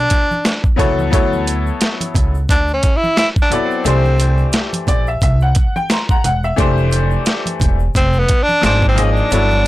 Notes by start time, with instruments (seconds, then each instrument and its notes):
Already playing: tenor saxophone D4
0.10 kick, closed hi-hat, shaker
0.31 high conga, shaker
0.45 snare, closed hi-hat, shaker
0.64 kick, shaker
0.76 upright bass C#2, upright piano F#3 B3 E4 A4 C#5, kick, snare, closed hi-hat, high conga, low conga, shaker
0.99 high conga, shaker
1.11 upright bass D2, upright piano F#3 B3 E4 A4 C#5, kick, closed hi-hat, shaker
1.33 high conga, shaker
1.47 closed hi-hat, shaker
1.66 shaker
1.81 snare, closed hi-hat, shaker
2.01 closed hi-hat, high conga, shaker
2.14 upright bass C#2, kick, closed hi-hat, low conga, shaker
2.35 shaker
2.48 upright bass D2, tenor saxophone D4, kick, closed hi-hat, shaker
2.68 shaker
2.74 tenor saxophone C#4
2.83 kick, closed hi-hat, shaker
2.96 tenor saxophone E4
3.04 high conga, shaker
3.17 tenor saxophone E4, snare, closed hi-hat, shaker
3.36 kick, shaker
3.42 tenor saxophone D4
3.50 upright piano F#3 B3 E4 A4 D5, closed hi-hat, low conga, shaker
3.65 tenor saxophone C4
3.71 shaker
3.84 upright bass C2, upright piano E3 A3 D4 G4 C5, closed hi-hat, shaker
4.05 high conga, shaker
4.18 closed hi-hat, shaker
4.38 shaker
4.52 snare, closed hi-hat, shaker
4.73 closed hi-hat, high conga, shaker
4.87 upright bass A#1, upright piano D5, kick, closed hi-hat, low conga, shaker
5.07 upright piano E5, shaker
5.21 upright bass C2, upright piano E5, kick, closed hi-hat, shaker
5.40 upright piano F#5, shaker
5.55 kick, closed hi-hat, shaker
5.76 upright piano G5, high conga, shaker
5.89 upright piano A#5 C6, snare, closed hi-hat, shaker
6.09 upright piano F#5 A#5, kick, shaker
6.24 upright bass E1, upright piano F#5, closed hi-hat, low conga, shaker
6.43 upright piano E5, shaker
6.56 upright bass F1, upright piano E3 A3 D4 G4 C5, kick, closed hi-hat, shaker
6.78 high conga, shaker
6.91 closed hi-hat, shaker
7.11 shaker
7.25 snare, closed hi-hat, shaker
7.46 closed hi-hat, high conga, shaker
7.60 upright bass E1, kick, closed hi-hat, low conga, shaker
7.79 shaker
7.94 upright bass F1, tenor saxophone C4, kick, closed hi-hat, shaker
8.13 shaker
8.19 tenor saxophone B3
8.28 kick, closed hi-hat, shaker
8.43 tenor saxophone D4
8.49 high conga, shaker
8.61 upright bass G#1, upright piano F3 A#3 D#4 G#4 C5, snare, closed hi-hat, shaker
8.66 tenor saxophone D4
8.82 kick, shaker
8.89 tenor saxophone C4
8.95 upright piano F3 A#3 D#4 G#4 D#5, closed hi-hat, low conga, shaker
9.04 tenor saxophone C#4
9.11 tenor saxophone D4
9.16 shaker
9.30 upright bass G1, upright piano F#3 B3 E4 A4 C#5, closed hi-hat, shaker
9.51 high conga, shaker
9.64 shaker